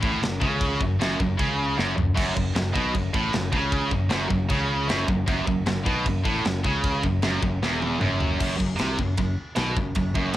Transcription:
0.01 0.21 A1 medium
0.01 0.21 A2 loud
0.01 kick loud
0.21 0.40 F#1 medium
0.21 0.37 F#2 medium
0.21 snare medium
0.21 china medium
0.41 0.78 C#2 medium
0.41 0.79 C#3 loud
0.41 kick medium
0.61 kick loud
0.61 china medium
0.80 0.99 F#1 medium
0.80 0.96 F#2 medium
0.80 kick medium
0.99 1.18 F#1 medium
0.99 1.18 F#2 loud
0.99 snare loud
0.99 china medium
1.20 1.38 F#1 medium
1.20 1.35 F#2 medium
1.20 kick medium
1.38 1.75 C#2 medium
1.38 1.77 C#3 medium
1.38 kick loud
1.38 china medium
1.77 1.96 F#1 loud
1.77 1.95 F#2 loud
1.77 snare medium
1.97 2.16 F#1 medium
1.97 2.12 F#2 medium
1.97 floor tom medium
2.14 2.35 F#1 medium
2.14 2.34 F#2 loud
2.14 kick loud
2.14 china soft
2.14 crash medium
2.36 2.55 F#1 medium
2.36 2.51 F#2 medium
2.36 kick medium
2.55 2.74 F#1 medium
2.55 2.71 F#2 medium
2.55 snare loud
2.55 china medium
2.75 2.94 B1 medium
2.75 2.94 B2 medium
2.75 kick loud
2.94 3.13 F#1 medium
2.94 3.10 F#2 medium
2.94 kick medium
2.94 china medium
3.14 3.32 A1 loud
3.14 3.33 A2 loud
3.14 kick loud
3.33 3.52 F#1 medium
3.33 3.49 F#2 medium
3.33 snare loud
3.33 china medium
3.53 3.89 C#2 medium
3.53 3.91 C#3 loud
3.53 kick medium
3.72 kick loud
3.72 china medium
3.91 4.10 F#1 medium
3.91 4.07 F#2 medium
3.91 kick medium
4.10 4.30 F#1 medium
4.10 4.28 F#2 loud
4.10 snare loud
4.10 china medium
4.29 4.49 F#1 medium
4.29 4.45 F#2 medium
4.29 kick medium
4.49 4.86 C#2 medium
4.49 4.88 C#3 loud
4.49 kick loud
4.49 china medium
4.88 5.07 F#1 medium
4.88 5.06 F#2 loud
4.88 snare loud
4.88 china medium
5.08 5.27 F#1 medium
5.08 5.24 F#2 medium
5.08 kick medium
5.27 5.46 F#1 medium
5.27 5.46 F#2 medium
5.27 kick loud
5.27 china medium
5.47 5.66 F#1 medium
5.47 5.63 F#2 medium
5.47 kick medium
5.66 5.85 F#1 medium
5.66 5.82 F#2 medium
5.66 snare loud
5.66 china medium
5.84 6.05 B1 medium
5.84 6.04 B2 loud
5.84 kick loud
6.04 6.24 F#1 medium
6.04 6.21 F#2 medium
6.04 kick medium
6.04 china medium
6.24 6.43 A1 medium
6.24 6.44 A2 loud
6.24 kick loud
6.44 6.64 F#1 medium
6.44 6.60 F#2 medium
6.44 snare loud
6.44 china medium
6.64 7.01 C#2 medium
6.64 7.03 C#3 loud
6.64 kick loud
6.84 kick loud
6.84 china medium
7.03 7.22 F#1 medium
7.03 7.19 F#2 medium
7.03 kick medium
7.22 7.42 F#1 loud
7.22 7.42 F#2 loud
7.22 snare loud
7.22 china medium
7.43 7.61 F#1 medium
7.43 7.59 F#2 medium
7.43 kick medium
7.63 7.99 E1 medium
7.63 8.00 E2 medium
7.63 snare medium
7.82 high tom medium
8.01 8.38 F#1 loud
8.01 8.39 F#2 loud
8.01 mid tom medium
8.20 floor tom medium
8.40 8.59 F#1 medium
8.40 8.59 F#2 medium
8.40 kick medium
8.40 crash loud
8.60 8.78 F#1 medium
8.60 8.76 F#2 medium
8.60 kick medium
8.79 8.98 C2 medium
8.79 8.98 C3 medium
8.79 snare loud
8.79 ride bell medium
8.98 9.17 F#1 medium
8.98 9.14 F#2 medium
8.98 kick medium
9.17 9.37 F#1 medium
9.17 9.34 F#2 medium
9.17 kick medium
9.17 ride bell medium
9.56 9.75 B1 medium
9.56 9.76 B2 loud
9.56 snare loud
9.56 ride bell medium
9.76 9.95 F#1 medium
9.76 9.92 F#2 medium
9.76 kick medium
9.95 10.15 F#1 medium
9.95 10.12 F#2 medium
9.95 kick medium
9.95 ride bell medium
10.15 10.37 F#1 medium
10.15 10.37 F#2 medium
10.15 kick medium
10.34 ride bell medium

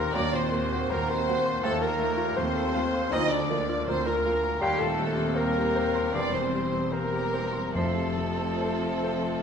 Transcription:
0.00 0.10 D#2 medium
0.00 0.18 A#2 medium
0.00 0.18 G3 medium
0.00 0.15 A#3 medium
0.00 0.18 D#4 medium
0.00 0.17 G4 medium
0.00 0.15 A#4 medium
0.00 0.16 A#4 loud
0.00 0.18 C5 medium
0.00 0.18 D#5 medium
0.00 0.17 A#5 medium
0.00 0.15 C6 medium
0.14 1.60 D#2 medium
0.14 0.82 D#2 medium
0.14 0.23 F#3 medium
0.14 0.42 F#3 medium
0.14 0.23 A#3 medium
0.14 0.34 D4 medium
0.14 0.33 D5 loud
0.14 0.35 D5 loud
0.14 0.34 D5 medium
0.14 0.42 A#5 medium
0.14 0.35 D6 medium
0.33 0.64 A#2 medium
0.33 0.91 C4 medium
0.33 0.90 C5 medium
0.33 0.93 C5 medium
0.33 0.91 C5 medium
0.33 0.92 C6 medium
0.51 0.60 F#3 medium
0.51 0.83 A#3 medium
0.51 0.60 A#3 medium
0.73 1.03 F#4 medium
0.89 1.56 D#2 medium
0.89 0.99 F#3 medium
0.89 0.99 A#3 medium
0.89 1.10 A#3 medium
0.89 1.09 A#4 medium
0.89 1.11 A#4 medium
0.89 1.10 A#4 medium
0.89 1.21 C5 medium
0.89 1.11 A#5 medium
1.09 1.65 C4 medium
1.09 1.39 A#4 medium
1.09 1.64 C5 medium
1.09 1.64 C5 loud
1.09 1.64 C5 medium
1.09 1.64 C6 medium
1.28 1.36 F#3 medium
1.28 1.36 A#3 medium
1.28 1.57 F#5 medium
1.46 1.64 C6 medium
1.63 3.08 D#2 medium
1.63 2.29 D#2 medium
1.63 1.72 F3 medium
1.63 1.90 F3 medium
1.63 1.82 A3 medium
1.63 1.72 A3 medium
1.63 1.82 A4 medium
1.63 1.83 A4 medium
1.63 1.90 A5 medium
1.63 1.83 A5 medium
1.81 2.11 D#3 medium
1.81 2.38 A#3 medium
1.81 2.36 A#4 medium
1.81 2.39 A#4 medium
1.81 2.38 A#4 medium
1.81 2.35 A#5 medium
1.98 2.09 F3 medium
1.98 2.29 A3 medium
1.98 2.08 A3 medium
2.17 2.48 F4 medium
2.36 3.03 D#2 medium
2.36 2.45 F3 medium
2.36 2.45 A3 medium
2.36 3.11 C4 medium
2.36 2.67 C5 medium
2.36 3.14 C5 loud
2.36 3.13 C5 medium
2.36 3.14 C6 medium
2.55 2.86 A4 medium
2.74 2.84 F3 medium
2.74 2.84 A3 medium
2.74 3.05 F5 medium
2.94 3.13 C6 medium
3.11 3.78 D2 medium
3.11 4.57 D2 medium
3.11 3.79 D2 medium
3.11 3.21 F3 medium
3.11 3.40 F3 medium
3.11 3.21 A#3 medium
3.11 3.31 D#4 medium
3.11 3.35 D#5 medium
3.11 3.32 D#5 loud
3.11 3.40 A#5 medium
3.11 3.31 D#6 medium
3.29 3.61 D3 medium
3.29 3.87 D4 medium
3.29 3.87 D5 medium
3.29 3.88 D5 medium
3.29 3.90 D5 medium
3.29 3.89 D6 medium
3.50 3.58 F3 medium
3.50 3.80 A#3 medium
3.50 3.58 A#3 medium
3.69 3.99 F4 medium
3.86 4.53 D2 medium
3.86 3.96 F3 medium
3.86 3.96 A#3 medium
3.86 4.06 C4 medium
3.86 4.18 A#4 medium
3.86 4.05 C5 medium
3.86 4.06 C5 medium
3.86 4.07 C5 medium
3.86 4.06 C6 medium
4.04 4.61 A#3 medium
4.04 4.36 F4 medium
4.04 4.61 A#4 medium
4.04 4.62 A#4 medium
4.04 4.59 A#5 medium
4.25 4.34 F3 medium
4.25 4.34 A#3 medium
4.25 4.55 F5 medium
4.44 4.62 A#5 medium
4.60 6.10 D#2 medium
4.60 6.11 D#2 medium
4.60 4.79 G3 medium
4.60 4.88 G3 medium
4.60 5.32 G3 medium
4.60 5.33 C4 medium
4.60 4.80 G4 medium
4.60 4.81 G4 medium
4.60 4.80 G4 medium
4.60 4.80 G5 medium
4.60 4.88 C6 medium
4.78 5.10 A#2 soft
4.78 5.36 A3 medium
4.78 5.16 A4 medium
4.78 5.37 A4 medium
4.78 5.15 A5 medium
4.99 5.29 G3 medium
5.17 5.48 C4 medium
5.35 6.13 G3 medium
5.35 6.14 A#3 medium
5.35 6.13 C4 medium
5.35 6.15 A#4 loud
5.35 6.15 A#4 medium
5.35 5.67 C5 medium
5.35 6.16 A#5 medium
5.57 5.88 G4 soft
5.76 6.07 C5 medium
5.95 6.15 C6 medium
6.12 7.73 E1 medium
6.12 7.72 E2 medium
6.12 6.92 G3 medium
6.12 6.43 G3 medium
6.12 6.92 C4 medium
6.12 6.33 D4 medium
6.12 6.34 D5 medium
6.12 6.43 C6 medium
6.12 6.35 D6 medium
6.32 6.66 E3 soft
6.32 6.91 C4 medium
6.32 6.94 C5 medium
6.32 6.93 C6 medium
6.54 6.86 G3 soft
6.73 7.05 C4 medium
6.92 7.74 G3 medium
6.92 7.75 A#3 medium
6.92 7.74 C4 medium
6.92 7.75 A#4 medium
6.92 7.76 A#4 medium
6.92 7.25 C5 medium
6.92 7.75 A#5 medium
7.13 7.46 G4 soft
7.34 7.67 C5 medium
7.53 7.75 C6 medium
7.73 9.43 F1 medium
7.73 9.43 F2 medium
7.73 9.00 F2 medium
7.73 9.43 F3 medium
7.73 8.08 F3 medium
7.73 9.43 A3 medium
7.73 9.43 C4 medium
7.73 9.43 A4 medium
7.73 9.43 A5 medium
7.73 8.08 C6 medium
7.96 8.31 C3 soft
8.17 8.53 F3 soft
8.39 8.74 C4 soft
8.61 8.96 C5 medium
8.83 9.17 F4 soft
9.04 9.37 C5 medium
9.23 9.43 C6 soft

